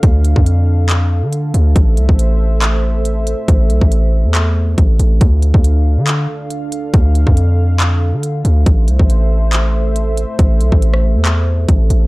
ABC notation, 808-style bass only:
X:1
M:4/4
L:1/16
Q:1/4=139
K:Am
V:1 name="808-style bass" clef=bass
D,,3 F,,8 D,3 D,,2 | A,,,2 C,, A,,,12 z | A,,,2 B,,, A,,,4 E,,4- E,, A,,,2 A,,,2 | D,,3 D,,4 D,3 z6 |
D,,3 F,,8 D,3 D,,2 | A,,,2 C,, A,,,12 z | A,,,2 B,,, A,,,4 E,,4- E,, A,,,2 A,,,2 |]